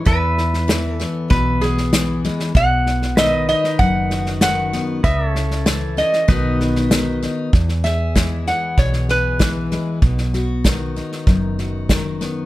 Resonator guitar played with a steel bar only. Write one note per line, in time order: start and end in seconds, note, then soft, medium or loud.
0.07 0.94 B4 loud
0.94 1.29 A4 loud
1.30 1.62 B4 medium
1.61 2.20 G#4 medium
2.57 3.14 F#5 loud
3.19 3.47 D#5 medium
3.49 3.80 D#5 medium
3.79 4.41 F#5 loud
4.42 5.06 F#5 medium
5.04 5.98 E5 loud
5.98 7.18 D#5 medium
7.84 8.44 E5 medium
8.48 8.77 F#5 medium
8.79 9.08 C#5 medium
9.11 10.31 B4 medium